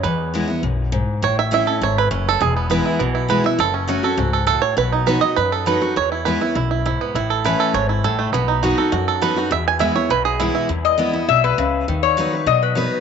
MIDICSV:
0, 0, Header, 1, 5, 480
1, 0, Start_track
1, 0, Key_signature, 4, "major"
1, 0, Tempo, 296004
1, 62, Time_signature, 4, 2, 24, 8
1, 21084, End_track
2, 0, Start_track
2, 0, Title_t, "Resonator guitar played with a steel bar"
2, 0, Program_c, 0, 25
2, 17591, Note_on_c, 0, 75, 93
2, 18252, Note_off_c, 0, 75, 0
2, 18302, Note_on_c, 0, 76, 91
2, 18540, Note_off_c, 0, 76, 0
2, 18551, Note_on_c, 0, 71, 91
2, 19212, Note_off_c, 0, 71, 0
2, 19505, Note_on_c, 0, 73, 87
2, 20168, Note_off_c, 0, 73, 0
2, 20223, Note_on_c, 0, 75, 105
2, 20460, Note_off_c, 0, 75, 0
2, 20474, Note_on_c, 0, 71, 66
2, 21084, Note_off_c, 0, 71, 0
2, 21084, End_track
3, 0, Start_track
3, 0, Title_t, "Five-string banjo"
3, 0, Program_c, 1, 105
3, 55, Note_on_c, 1, 71, 81
3, 736, Note_off_c, 1, 71, 0
3, 2008, Note_on_c, 1, 73, 107
3, 2245, Note_off_c, 1, 73, 0
3, 2252, Note_on_c, 1, 76, 109
3, 2476, Note_off_c, 1, 76, 0
3, 2496, Note_on_c, 1, 76, 101
3, 2709, Note_on_c, 1, 69, 61
3, 2929, Note_off_c, 1, 76, 0
3, 2975, Note_on_c, 1, 73, 95
3, 3215, Note_off_c, 1, 73, 0
3, 3216, Note_on_c, 1, 71, 101
3, 3378, Note_off_c, 1, 69, 0
3, 3415, Note_off_c, 1, 71, 0
3, 3422, Note_on_c, 1, 61, 62
3, 3707, Note_on_c, 1, 69, 91
3, 3905, Note_off_c, 1, 61, 0
3, 3917, Note_on_c, 1, 68, 93
3, 3930, Note_off_c, 1, 69, 0
3, 4152, Note_off_c, 1, 68, 0
3, 4158, Note_on_c, 1, 59, 57
3, 4391, Note_on_c, 1, 71, 85
3, 4629, Note_on_c, 1, 64, 55
3, 4824, Note_off_c, 1, 59, 0
3, 4855, Note_on_c, 1, 52, 63
3, 5066, Note_off_c, 1, 71, 0
3, 5084, Note_off_c, 1, 64, 0
3, 5104, Note_on_c, 1, 64, 56
3, 5347, Note_on_c, 1, 71, 81
3, 5540, Note_off_c, 1, 52, 0
3, 5602, Note_off_c, 1, 71, 0
3, 5610, Note_on_c, 1, 76, 93
3, 5777, Note_off_c, 1, 64, 0
3, 5820, Note_off_c, 1, 76, 0
3, 5837, Note_on_c, 1, 69, 84
3, 6063, Note_off_c, 1, 69, 0
3, 6064, Note_on_c, 1, 61, 58
3, 6307, Note_on_c, 1, 66, 64
3, 6552, Note_on_c, 1, 69, 65
3, 6737, Note_off_c, 1, 61, 0
3, 6763, Note_off_c, 1, 66, 0
3, 6783, Note_on_c, 1, 66, 59
3, 7007, Note_off_c, 1, 69, 0
3, 7026, Note_on_c, 1, 69, 57
3, 7230, Note_off_c, 1, 69, 0
3, 7250, Note_on_c, 1, 69, 85
3, 7464, Note_off_c, 1, 66, 0
3, 7486, Note_on_c, 1, 73, 95
3, 7489, Note_off_c, 1, 69, 0
3, 7741, Note_off_c, 1, 73, 0
3, 7747, Note_on_c, 1, 71, 99
3, 7978, Note_off_c, 1, 71, 0
3, 7986, Note_on_c, 1, 63, 59
3, 8220, Note_on_c, 1, 71, 96
3, 8443, Note_off_c, 1, 71, 0
3, 8450, Note_on_c, 1, 75, 108
3, 8659, Note_off_c, 1, 63, 0
3, 8699, Note_on_c, 1, 71, 102
3, 8704, Note_off_c, 1, 75, 0
3, 8934, Note_off_c, 1, 71, 0
3, 8956, Note_on_c, 1, 69, 60
3, 9196, Note_on_c, 1, 71, 92
3, 9435, Note_on_c, 1, 66, 59
3, 9623, Note_off_c, 1, 69, 0
3, 9670, Note_off_c, 1, 66, 0
3, 9683, Note_on_c, 1, 73, 105
3, 9688, Note_off_c, 1, 71, 0
3, 9914, Note_off_c, 1, 73, 0
3, 9920, Note_on_c, 1, 64, 56
3, 10139, Note_on_c, 1, 71, 78
3, 10382, Note_off_c, 1, 64, 0
3, 10401, Note_on_c, 1, 64, 61
3, 10618, Note_off_c, 1, 64, 0
3, 10631, Note_off_c, 1, 71, 0
3, 10637, Note_on_c, 1, 64, 61
3, 10858, Note_off_c, 1, 64, 0
3, 10878, Note_on_c, 1, 64, 53
3, 11107, Note_off_c, 1, 64, 0
3, 11126, Note_on_c, 1, 64, 61
3, 11369, Note_on_c, 1, 59, 54
3, 11579, Note_off_c, 1, 64, 0
3, 11596, Note_off_c, 1, 59, 0
3, 11599, Note_on_c, 1, 64, 66
3, 11841, Note_on_c, 1, 69, 59
3, 12088, Note_on_c, 1, 71, 92
3, 12272, Note_off_c, 1, 64, 0
3, 12302, Note_off_c, 1, 69, 0
3, 12321, Note_on_c, 1, 69, 62
3, 12559, Note_on_c, 1, 73, 100
3, 12573, Note_off_c, 1, 71, 0
3, 12792, Note_off_c, 1, 73, 0
3, 12798, Note_on_c, 1, 64, 57
3, 12985, Note_off_c, 1, 69, 0
3, 13043, Note_on_c, 1, 69, 85
3, 13276, Note_on_c, 1, 57, 62
3, 13463, Note_off_c, 1, 64, 0
3, 13499, Note_off_c, 1, 57, 0
3, 13505, Note_on_c, 1, 59, 76
3, 13745, Note_off_c, 1, 69, 0
3, 13752, Note_on_c, 1, 63, 61
3, 13993, Note_on_c, 1, 66, 61
3, 14237, Note_on_c, 1, 69, 62
3, 14286, Note_off_c, 1, 59, 0
3, 14419, Note_off_c, 1, 63, 0
3, 14452, Note_off_c, 1, 66, 0
3, 14471, Note_on_c, 1, 66, 59
3, 14704, Note_off_c, 1, 69, 0
3, 14723, Note_on_c, 1, 69, 59
3, 14955, Note_on_c, 1, 71, 95
3, 15146, Note_off_c, 1, 66, 0
3, 15202, Note_on_c, 1, 66, 60
3, 15384, Note_off_c, 1, 69, 0
3, 15430, Note_off_c, 1, 66, 0
3, 15439, Note_on_c, 1, 76, 101
3, 15444, Note_off_c, 1, 71, 0
3, 15684, Note_off_c, 1, 76, 0
3, 15691, Note_on_c, 1, 80, 104
3, 15889, Note_off_c, 1, 80, 0
3, 15896, Note_on_c, 1, 76, 92
3, 16129, Note_off_c, 1, 76, 0
3, 16145, Note_on_c, 1, 73, 89
3, 16388, Note_off_c, 1, 73, 0
3, 16389, Note_on_c, 1, 71, 94
3, 16615, Note_off_c, 1, 71, 0
3, 16622, Note_on_c, 1, 68, 80
3, 16859, Note_on_c, 1, 64, 64
3, 17071, Note_off_c, 1, 68, 0
3, 17085, Note_off_c, 1, 64, 0
3, 17104, Note_on_c, 1, 64, 61
3, 17340, Note_off_c, 1, 64, 0
3, 21084, End_track
4, 0, Start_track
4, 0, Title_t, "Steel-string acoustic guitar"
4, 0, Program_c, 2, 25
4, 66, Note_on_c, 2, 40, 87
4, 546, Note_on_c, 2, 52, 84
4, 563, Note_on_c, 2, 56, 88
4, 568, Note_on_c, 2, 59, 92
4, 574, Note_on_c, 2, 64, 87
4, 753, Note_off_c, 2, 64, 0
4, 773, Note_on_c, 2, 64, 63
4, 782, Note_off_c, 2, 52, 0
4, 790, Note_off_c, 2, 56, 0
4, 793, Note_off_c, 2, 59, 0
4, 809, Note_on_c, 2, 59, 49
4, 979, Note_off_c, 2, 40, 0
4, 1006, Note_off_c, 2, 64, 0
4, 1022, Note_on_c, 2, 42, 79
4, 1024, Note_off_c, 2, 59, 0
4, 1480, Note_off_c, 2, 42, 0
4, 1495, Note_on_c, 2, 44, 90
4, 1957, Note_off_c, 2, 44, 0
4, 1986, Note_on_c, 2, 45, 89
4, 2450, Note_on_c, 2, 52, 89
4, 2459, Note_on_c, 2, 57, 96
4, 2473, Note_on_c, 2, 61, 95
4, 2482, Note_on_c, 2, 64, 101
4, 2679, Note_off_c, 2, 64, 0
4, 2695, Note_off_c, 2, 52, 0
4, 2698, Note_on_c, 2, 64, 58
4, 2699, Note_off_c, 2, 57, 0
4, 2707, Note_off_c, 2, 61, 0
4, 2726, Note_on_c, 2, 61, 46
4, 2900, Note_off_c, 2, 45, 0
4, 2930, Note_off_c, 2, 64, 0
4, 2943, Note_off_c, 2, 61, 0
4, 2944, Note_on_c, 2, 44, 84
4, 3402, Note_off_c, 2, 44, 0
4, 3419, Note_on_c, 2, 42, 91
4, 3880, Note_off_c, 2, 42, 0
4, 3900, Note_on_c, 2, 40, 90
4, 4374, Note_on_c, 2, 52, 92
4, 4383, Note_on_c, 2, 56, 90
4, 4400, Note_on_c, 2, 59, 87
4, 4404, Note_on_c, 2, 64, 107
4, 4818, Note_off_c, 2, 40, 0
4, 4838, Note_off_c, 2, 52, 0
4, 4843, Note_off_c, 2, 56, 0
4, 4851, Note_off_c, 2, 59, 0
4, 4853, Note_off_c, 2, 64, 0
4, 4864, Note_on_c, 2, 47, 83
4, 5327, Note_on_c, 2, 52, 80
4, 5344, Note_on_c, 2, 56, 90
4, 5349, Note_on_c, 2, 59, 99
4, 5357, Note_on_c, 2, 64, 97
4, 5558, Note_off_c, 2, 64, 0
4, 5575, Note_off_c, 2, 52, 0
4, 5578, Note_on_c, 2, 64, 68
4, 5584, Note_off_c, 2, 56, 0
4, 5586, Note_off_c, 2, 59, 0
4, 5613, Note_on_c, 2, 59, 46
4, 5781, Note_off_c, 2, 47, 0
4, 5811, Note_off_c, 2, 64, 0
4, 5814, Note_on_c, 2, 42, 96
4, 5829, Note_off_c, 2, 59, 0
4, 6284, Note_on_c, 2, 54, 89
4, 6298, Note_on_c, 2, 57, 95
4, 6308, Note_on_c, 2, 61, 97
4, 6320, Note_on_c, 2, 66, 96
4, 6515, Note_off_c, 2, 66, 0
4, 6534, Note_off_c, 2, 54, 0
4, 6535, Note_on_c, 2, 66, 63
4, 6541, Note_off_c, 2, 57, 0
4, 6546, Note_off_c, 2, 61, 0
4, 6568, Note_on_c, 2, 61, 52
4, 6736, Note_off_c, 2, 42, 0
4, 6770, Note_off_c, 2, 66, 0
4, 6770, Note_on_c, 2, 44, 82
4, 6786, Note_off_c, 2, 61, 0
4, 7237, Note_off_c, 2, 44, 0
4, 7242, Note_on_c, 2, 45, 86
4, 7713, Note_off_c, 2, 45, 0
4, 7730, Note_on_c, 2, 47, 88
4, 8213, Note_on_c, 2, 54, 82
4, 8229, Note_on_c, 2, 59, 96
4, 8242, Note_on_c, 2, 63, 91
4, 8251, Note_on_c, 2, 66, 101
4, 8450, Note_off_c, 2, 66, 0
4, 8459, Note_off_c, 2, 54, 0
4, 8467, Note_off_c, 2, 59, 0
4, 8469, Note_on_c, 2, 66, 64
4, 8474, Note_off_c, 2, 63, 0
4, 8508, Note_on_c, 2, 63, 47
4, 8654, Note_off_c, 2, 47, 0
4, 8697, Note_off_c, 2, 66, 0
4, 8715, Note_on_c, 2, 42, 80
4, 8717, Note_off_c, 2, 63, 0
4, 9180, Note_on_c, 2, 54, 90
4, 9191, Note_on_c, 2, 59, 83
4, 9202, Note_on_c, 2, 63, 95
4, 9211, Note_on_c, 2, 66, 98
4, 9409, Note_off_c, 2, 66, 0
4, 9422, Note_off_c, 2, 54, 0
4, 9428, Note_off_c, 2, 59, 0
4, 9429, Note_on_c, 2, 66, 70
4, 9433, Note_off_c, 2, 63, 0
4, 9457, Note_on_c, 2, 63, 50
4, 9627, Note_off_c, 2, 42, 0
4, 9657, Note_off_c, 2, 66, 0
4, 9670, Note_on_c, 2, 40, 87
4, 9672, Note_off_c, 2, 63, 0
4, 10147, Note_on_c, 2, 52, 81
4, 10160, Note_on_c, 2, 56, 80
4, 10173, Note_on_c, 2, 59, 81
4, 10180, Note_on_c, 2, 64, 101
4, 10375, Note_off_c, 2, 64, 0
4, 10386, Note_off_c, 2, 52, 0
4, 10393, Note_off_c, 2, 56, 0
4, 10394, Note_on_c, 2, 64, 59
4, 10399, Note_off_c, 2, 59, 0
4, 10423, Note_on_c, 2, 59, 45
4, 10584, Note_off_c, 2, 40, 0
4, 10620, Note_off_c, 2, 64, 0
4, 10627, Note_on_c, 2, 42, 84
4, 10634, Note_off_c, 2, 59, 0
4, 11085, Note_off_c, 2, 42, 0
4, 11117, Note_on_c, 2, 44, 81
4, 11570, Note_off_c, 2, 44, 0
4, 11604, Note_on_c, 2, 45, 90
4, 12072, Note_on_c, 2, 52, 91
4, 12089, Note_on_c, 2, 57, 102
4, 12100, Note_on_c, 2, 61, 90
4, 12106, Note_on_c, 2, 64, 105
4, 12510, Note_off_c, 2, 45, 0
4, 12528, Note_off_c, 2, 52, 0
4, 12536, Note_off_c, 2, 57, 0
4, 12541, Note_off_c, 2, 61, 0
4, 12544, Note_off_c, 2, 64, 0
4, 12556, Note_on_c, 2, 44, 83
4, 13009, Note_off_c, 2, 44, 0
4, 13043, Note_on_c, 2, 45, 87
4, 13492, Note_off_c, 2, 45, 0
4, 13527, Note_on_c, 2, 47, 90
4, 13990, Note_on_c, 2, 54, 93
4, 14004, Note_on_c, 2, 59, 92
4, 14008, Note_on_c, 2, 63, 106
4, 14021, Note_on_c, 2, 66, 91
4, 14211, Note_off_c, 2, 66, 0
4, 14226, Note_off_c, 2, 54, 0
4, 14230, Note_on_c, 2, 66, 57
4, 14232, Note_off_c, 2, 59, 0
4, 14234, Note_off_c, 2, 63, 0
4, 14262, Note_on_c, 2, 63, 52
4, 14430, Note_off_c, 2, 47, 0
4, 14456, Note_off_c, 2, 66, 0
4, 14467, Note_on_c, 2, 42, 93
4, 14471, Note_off_c, 2, 63, 0
4, 14944, Note_on_c, 2, 54, 85
4, 14951, Note_on_c, 2, 59, 81
4, 14960, Note_on_c, 2, 63, 99
4, 14972, Note_on_c, 2, 66, 96
4, 15165, Note_off_c, 2, 66, 0
4, 15182, Note_off_c, 2, 54, 0
4, 15184, Note_on_c, 2, 66, 65
4, 15185, Note_off_c, 2, 59, 0
4, 15190, Note_off_c, 2, 63, 0
4, 15216, Note_on_c, 2, 63, 58
4, 15379, Note_off_c, 2, 42, 0
4, 15412, Note_off_c, 2, 66, 0
4, 15417, Note_on_c, 2, 40, 101
4, 15428, Note_off_c, 2, 63, 0
4, 15881, Note_on_c, 2, 52, 98
4, 15900, Note_on_c, 2, 56, 97
4, 15911, Note_on_c, 2, 59, 104
4, 15914, Note_on_c, 2, 64, 107
4, 16121, Note_off_c, 2, 64, 0
4, 16129, Note_off_c, 2, 52, 0
4, 16139, Note_off_c, 2, 56, 0
4, 16140, Note_on_c, 2, 64, 59
4, 16144, Note_off_c, 2, 59, 0
4, 16168, Note_on_c, 2, 59, 48
4, 16333, Note_off_c, 2, 40, 0
4, 16369, Note_off_c, 2, 64, 0
4, 16383, Note_off_c, 2, 59, 0
4, 16383, Note_on_c, 2, 47, 87
4, 16858, Note_on_c, 2, 52, 98
4, 16867, Note_on_c, 2, 56, 88
4, 16874, Note_on_c, 2, 59, 102
4, 16889, Note_on_c, 2, 64, 101
4, 17295, Note_off_c, 2, 47, 0
4, 17316, Note_off_c, 2, 52, 0
4, 17321, Note_off_c, 2, 56, 0
4, 17324, Note_off_c, 2, 59, 0
4, 17332, Note_off_c, 2, 64, 0
4, 17336, Note_on_c, 2, 40, 90
4, 17800, Note_on_c, 2, 52, 86
4, 17812, Note_on_c, 2, 56, 81
4, 17823, Note_on_c, 2, 59, 104
4, 17832, Note_on_c, 2, 64, 85
4, 18034, Note_off_c, 2, 64, 0
4, 18047, Note_off_c, 2, 52, 0
4, 18053, Note_off_c, 2, 56, 0
4, 18053, Note_on_c, 2, 64, 62
4, 18059, Note_off_c, 2, 59, 0
4, 18089, Note_on_c, 2, 59, 46
4, 18251, Note_off_c, 2, 40, 0
4, 18284, Note_off_c, 2, 64, 0
4, 18301, Note_on_c, 2, 47, 80
4, 18302, Note_off_c, 2, 59, 0
4, 18757, Note_off_c, 2, 47, 0
4, 18779, Note_on_c, 2, 49, 89
4, 19236, Note_off_c, 2, 49, 0
4, 19268, Note_on_c, 2, 51, 82
4, 19734, Note_on_c, 2, 54, 83
4, 19749, Note_on_c, 2, 59, 98
4, 19765, Note_on_c, 2, 63, 92
4, 19776, Note_on_c, 2, 71, 97
4, 19973, Note_off_c, 2, 54, 0
4, 19979, Note_off_c, 2, 71, 0
4, 19981, Note_off_c, 2, 59, 0
4, 19988, Note_off_c, 2, 63, 0
4, 19998, Note_on_c, 2, 71, 60
4, 20024, Note_on_c, 2, 63, 47
4, 20176, Note_off_c, 2, 51, 0
4, 20214, Note_on_c, 2, 54, 81
4, 20215, Note_off_c, 2, 71, 0
4, 20228, Note_off_c, 2, 63, 0
4, 20661, Note_off_c, 2, 54, 0
4, 20681, Note_on_c, 2, 54, 83
4, 20702, Note_on_c, 2, 59, 93
4, 20711, Note_on_c, 2, 63, 88
4, 20713, Note_on_c, 2, 71, 94
4, 21084, Note_off_c, 2, 54, 0
4, 21084, Note_off_c, 2, 59, 0
4, 21084, Note_off_c, 2, 63, 0
4, 21084, Note_off_c, 2, 71, 0
4, 21084, End_track
5, 0, Start_track
5, 0, Title_t, "Upright bass"
5, 0, Program_c, 3, 32
5, 54, Note_on_c, 3, 40, 93
5, 681, Note_off_c, 3, 40, 0
5, 1013, Note_on_c, 3, 35, 90
5, 1641, Note_off_c, 3, 35, 0
5, 1976, Note_on_c, 3, 33, 94
5, 2603, Note_off_c, 3, 33, 0
5, 2935, Note_on_c, 3, 32, 83
5, 3348, Note_off_c, 3, 32, 0
5, 3416, Note_on_c, 3, 30, 86
5, 3829, Note_off_c, 3, 30, 0
5, 3909, Note_on_c, 3, 28, 101
5, 4532, Note_off_c, 3, 28, 0
5, 4866, Note_on_c, 3, 35, 86
5, 5491, Note_off_c, 3, 35, 0
5, 5815, Note_on_c, 3, 30, 93
5, 6444, Note_off_c, 3, 30, 0
5, 6770, Note_on_c, 3, 37, 87
5, 7400, Note_off_c, 3, 37, 0
5, 7733, Note_on_c, 3, 35, 93
5, 8362, Note_off_c, 3, 35, 0
5, 8708, Note_on_c, 3, 42, 89
5, 9332, Note_off_c, 3, 42, 0
5, 9667, Note_on_c, 3, 40, 91
5, 10292, Note_off_c, 3, 40, 0
5, 10628, Note_on_c, 3, 35, 90
5, 11252, Note_off_c, 3, 35, 0
5, 11587, Note_on_c, 3, 33, 101
5, 12211, Note_off_c, 3, 33, 0
5, 12546, Note_on_c, 3, 32, 93
5, 12955, Note_off_c, 3, 32, 0
5, 13017, Note_on_c, 3, 33, 79
5, 13430, Note_off_c, 3, 33, 0
5, 13497, Note_on_c, 3, 35, 99
5, 14123, Note_off_c, 3, 35, 0
5, 14465, Note_on_c, 3, 42, 85
5, 15088, Note_off_c, 3, 42, 0
5, 15415, Note_on_c, 3, 40, 101
5, 16041, Note_off_c, 3, 40, 0
5, 16370, Note_on_c, 3, 35, 89
5, 16997, Note_off_c, 3, 35, 0
5, 17334, Note_on_c, 3, 40, 87
5, 17959, Note_off_c, 3, 40, 0
5, 18296, Note_on_c, 3, 35, 88
5, 18705, Note_off_c, 3, 35, 0
5, 18774, Note_on_c, 3, 37, 86
5, 19184, Note_off_c, 3, 37, 0
5, 19264, Note_on_c, 3, 39, 93
5, 19886, Note_off_c, 3, 39, 0
5, 20208, Note_on_c, 3, 47, 95
5, 20834, Note_off_c, 3, 47, 0
5, 21084, End_track
0, 0, End_of_file